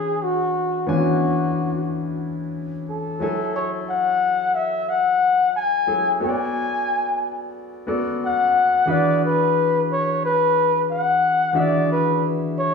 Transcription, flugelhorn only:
0.00 0.25 G#4 medium
0.23 0.88 F#4 medium
0.89 2.18 F#4 medium
2.89 3.51 A4 medium
3.56 3.71 C#5 medium
3.89 4.57 F#5 medium
4.55 4.91 E5 medium
4.90 5.55 F#5 loud
5.56 6.18 G#5 loud
6.24 7.52 G#5 medium
8.26 8.92 F#5 loud
8.91 9.23 D5 medium
9.25 9.86 B4 medium
9.92 10.21 C#5 medium
10.25 10.86 B4 medium
10.91 11.61 F#5 medium
11.60 11.90 D5 medium
11.92 12.27 B4 medium
12.59 12.74 C#5 medium

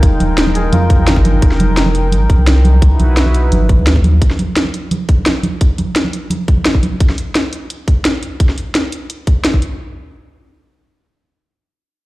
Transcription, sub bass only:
0.03 0.18 F1 loud
0.20 0.72 D#1 medium
0.72 1.00 F2 loud
0.99 1.41 G1 medium
1.42 2.14 F1 loud
2.12 2.28 G#1 loud
2.30 2.38 F1 medium
2.39 2.81 C2 medium
2.82 2.98 C#2 loud
3.00 3.51 B1 medium
3.52 3.80 G#1 medium
3.78 4.20 D#2 medium

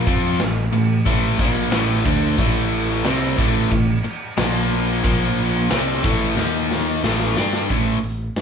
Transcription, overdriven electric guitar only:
0.07 0.39 F3 loud
0.07 0.39 C4 medium
0.07 0.40 F4 loud
0.40 0.67 A2 medium
0.40 0.67 E3 medium
0.73 1.00 A2 medium
0.73 1.00 E3 medium
1.06 1.38 A2 medium
1.06 1.38 E3 loud
1.06 1.39 A3 medium
1.38 1.71 A#2 loud
1.38 1.72 F3 loud
1.38 1.72 A#3 loud
1.71 2.04 A2 medium
1.71 2.05 E3 medium
1.71 2.04 A3 loud
2.05 2.37 D3 medium
2.05 2.38 A3 medium
2.05 2.38 D4 loud
2.38 3.03 A2 medium
2.38 3.04 E3 loud
2.38 3.04 A3 loud
3.04 3.37 C3 medium
3.04 3.37 G3 medium
3.04 3.38 C4 medium
3.37 3.69 A2 loud
3.37 3.70 E3 loud
3.37 3.71 A3 loud
3.71 3.98 A2 medium
3.71 3.98 E3 medium
4.05 muted overdriven electric guitar stroke medium
4.38 5.03 A#2 medium
4.38 5.03 F3 medium
4.38 5.04 A#3 loud
5.04 5.70 A#2 medium
5.04 5.70 F3 loud
5.04 5.70 A#3 loud
5.71 6.03 C3 medium
5.71 6.03 G3 medium
5.71 6.04 C4 medium
6.04 6.36 A2 loud
6.04 6.37 E3 loud
6.04 6.37 A3 loud
6.38 7.03 D#3 loud
6.38 7.03 A#3 medium
6.38 7.04 D#4 loud
7.04 7.36 A2 medium
7.04 7.37 E3 loud
7.04 7.37 A3 loud
7.37 7.69 G3 medium
7.37 7.70 D4 loud
7.37 7.70 G4 loud
7.71 7.97 A2 medium
7.71 7.97 E3 medium
7.71 7.98 A3 medium

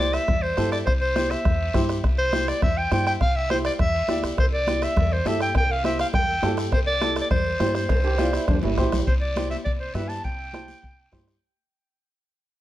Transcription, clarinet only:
0.00 0.15 D5 loud
0.13 0.44 E5 loud
0.42 0.71 C5 medium
0.71 0.78 D5 medium
0.86 0.93 C5 medium
1.01 1.32 C5 medium
1.30 1.89 E5 medium
2.18 2.49 C5 loud
2.48 2.62 D5 medium
2.63 2.79 E5 loud
2.77 2.92 G5 medium
2.93 3.06 G5 medium
3.07 3.13 G5 loud
3.21 3.37 F5 loud
3.36 3.50 E5 loud
3.51 3.57 C5 medium
3.66 3.72 D5 loud
3.81 4.21 E5 loud
4.39 4.46 C5 loud
4.53 4.85 D5 loud
4.83 5.14 E5 loud
5.13 5.29 C5 medium
5.27 5.41 E5 medium
5.42 5.55 G5 medium
5.57 5.73 G5 loud
5.71 5.85 F5 loud
5.85 5.98 E5 medium
6.01 6.07 F5 medium
6.14 6.55 G5 loud
6.73 6.79 C5 medium
6.87 7.14 D5 loud
7.21 7.26 D5 medium
7.31 7.71 C5 medium
7.76 8.74 C5 medium
9.07 9.13 C5 medium
9.21 9.48 D5 medium
9.50 9.57 E5 medium
9.65 9.71 D5 medium
9.80 9.96 C5 medium
9.95 10.10 E5 medium
10.09 10.24 A5 medium
10.24 11.23 G5 loud

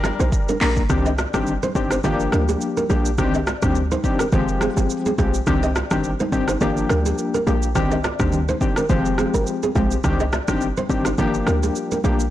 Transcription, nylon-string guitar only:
0.05 0.17 F4 medium
0.05 0.17 D5 medium
0.20 0.30 D#4 medium
0.20 0.30 C5 medium
0.49 0.59 D4 medium
0.49 0.59 A#4 medium
0.62 0.74 D4 medium
0.62 0.74 A#4 medium
1.06 1.16 G4 medium
1.06 1.16 D#5 medium
1.19 1.31 F4 medium
1.19 1.31 D5 medium
1.63 1.73 D#4 medium
1.63 1.73 C5 medium
1.92 2.02 D#4 medium
1.92 2.01 C5 medium
2.04 2.17 F4 medium
2.04 2.16 D5 medium
2.33 2.46 D4 medium
2.33 2.45 A#4 medium
2.49 2.59 A#3 medium
2.49 2.59 G4 medium
2.77 2.88 D4 medium
2.77 2.87 A#4 medium
2.90 3.03 A#3 medium
2.90 3.02 G4 medium
3.34 3.45 G4 medium
3.34 3.44 D#5 medium
3.47 3.60 F4 medium
3.47 3.59 D5 medium
3.92 4.02 D#4 medium
3.92 4.01 C5 medium
4.20 4.31 D4 medium
4.20 4.30 A#4 medium
4.33 4.46 F4 medium
4.33 4.45 C5 medium
4.62 4.74 C4 medium
4.62 4.74 G#4 medium
4.77 4.88 A#3 medium
4.77 4.87 G4 medium
5.06 5.16 C4 medium
5.06 5.16 G#4 medium
5.19 5.31 A#3 medium
5.19 5.31 G4 medium
5.63 5.73 G4 medium
5.63 5.73 D#5 medium
5.76 5.88 F4 medium
5.76 5.88 D5 medium
6.20 6.30 D#4 medium
6.20 6.30 C5 medium
6.49 6.59 D#4 medium
6.49 6.59 C5 medium
6.62 6.74 F4 medium
6.62 6.74 D5 medium
6.90 7.03 D4 medium
6.90 7.02 A#4 medium
7.06 7.16 A#3 medium
7.06 7.16 G4 medium
7.34 7.45 D4 medium
7.34 7.44 A#4 medium
7.47 7.60 A#3 medium
7.47 7.59 G4 medium
7.92 8.02 G4 medium
7.92 8.01 D#5 medium
8.04 8.17 F4 medium
8.04 8.16 D5 medium
8.49 8.59 D#4 medium
8.49 8.59 C5 medium
8.77 8.88 D4 medium
8.77 8.87 A#4 medium
8.90 9.03 F4 medium
8.90 9.02 C5 medium
9.19 9.31 C4 medium
9.19 9.31 G#4 medium
9.34 9.45 D4 medium
9.34 9.44 A#4 medium
9.63 9.73 C4 medium
9.63 9.73 G#4 medium
9.76 9.88 G#3 medium
9.76 9.88 F4 medium
10.20 10.31 G4 medium
10.20 10.30 D#5 medium
10.33 10.46 F4 medium
10.33 10.45 D5 medium
10.77 10.88 D#4 medium
10.77 10.87 C5 medium
11.06 11.16 D#4 medium
11.06 11.16 C5 medium
11.19 11.31 F4 medium
11.19 11.31 D5 medium
11.47 11.60 D4 medium
11.47 11.59 A#4 medium
11.63 11.73 A#3 medium
11.63 11.73 G4 medium
11.92 12.02 D4 medium
11.92 12.01 A#4 medium
12.04 12.17 A#3 medium
12.04 12.17 G4 medium

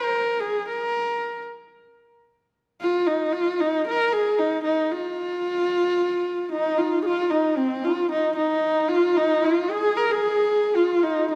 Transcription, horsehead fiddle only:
0.00 0.41 A#4 medium
0.40 0.67 G#4 medium
0.68 1.43 A#4 medium
2.81 3.09 F4 medium
3.07 3.34 D#4 medium
3.32 3.62 F4 medium
3.60 3.86 D#4 medium
3.87 4.14 A#4 medium
4.12 4.40 G#4 medium
4.39 4.63 D#4 medium
4.64 4.93 D#4 medium
4.92 6.50 F4 medium
6.51 6.79 D#4 medium
6.78 7.04 F4 medium
7.05 7.32 F4 medium
7.30 7.58 D#4 medium
7.56 7.86 C4 medium
7.84 8.10 F4 medium
8.11 8.35 D#4 medium
8.36 8.90 D#4 medium
8.89 9.19 F4 medium
9.17 9.46 D#4 loud
9.45 9.73 F4 medium
9.71 9.98 G#4 loud
9.97 10.13 A#4 medium
10.11 10.78 G#4 medium
10.76 11.05 F4 medium
11.03 11.29 D#4 medium
11.31 11.35 D#4 loud

